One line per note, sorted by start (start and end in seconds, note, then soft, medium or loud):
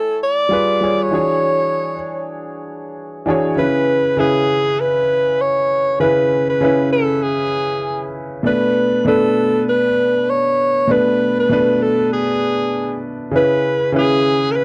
0.00 0.54 A3 medium
0.00 0.53 E4 medium
0.00 0.19 A4 medium
0.00 0.53 C#5 medium
0.00 0.53 G#5 medium
0.24 1.04 D5 loud
0.49 0.76 G3 medium
0.49 0.77 F4 medium
0.49 0.77 G#4 medium
0.53 0.78 B4 medium
0.81 1.03 G3 medium
0.81 1.03 F4 medium
0.81 1.04 G#4 medium
0.81 1.04 C#5 medium
1.03 2.23 C#5 loud
1.11 1.92 E3 medium
1.11 1.93 D4 medium
1.11 1.93 F#4 medium
1.11 1.94 G#4 medium
1.11 1.94 C#5 medium
3.26 3.47 E3 medium
3.26 3.48 D4 medium
3.26 3.48 F#4 medium
3.26 3.49 G#4 medium
3.30 3.50 C#5 medium
3.56 3.97 C#3 medium
3.56 3.98 C#4 medium
3.56 3.98 E4 medium
3.56 4.21 B4 loud
3.56 3.99 B4 medium
4.17 4.98 C#3 medium
4.17 4.98 C#4 medium
4.17 4.99 E4 medium
4.17 4.82 G#4 medium
4.17 5.00 B4 medium
4.80 5.43 B4 loud
5.41 6.00 C#5 medium
6.00 6.41 C#3 medium
6.00 6.41 C#4 medium
6.00 6.42 E4 medium
6.00 6.46 B4 medium
6.00 6.43 B4 medium
6.50 6.90 B4 medium
6.61 7.42 C#3 medium
6.61 7.42 C#4 medium
6.61 7.43 E4 medium
6.65 7.44 B4 medium
6.93 7.25 A4 medium
7.23 8.15 G#4 medium
8.43 8.85 B2 medium
8.43 8.85 A3 medium
8.43 8.86 D4 medium
8.43 9.03 B4 loud
8.43 8.86 B4 medium
9.05 9.86 B2 medium
9.05 9.86 A3 medium
9.05 9.87 D4 medium
9.05 9.64 A4 loud
9.05 9.88 B4 medium
9.69 10.31 B4 loud
10.30 10.94 C#5 medium
10.87 11.29 B2 medium
10.87 11.29 A3 medium
10.87 11.30 D4 medium
10.87 11.31 B4 medium
10.92 11.39 B4 loud
11.39 11.84 B4 loud
11.49 12.30 B2 medium
11.49 12.31 A3 medium
11.49 12.31 D4 medium
11.49 12.32 B4 medium
11.82 12.12 A4 medium
12.13 13.00 G#4 medium
13.31 13.73 C#3 medium
13.31 13.74 C#4 medium
13.31 13.74 E4 medium
13.36 13.75 B4 medium
13.36 13.92 B4 loud
13.92 14.64 C#3 medium
13.92 14.64 C#4 medium
13.92 14.64 E4 medium
13.92 14.64 B4 medium
13.98 14.53 G#4 medium
14.52 14.58 A#4 medium
14.56 14.64 B4 loud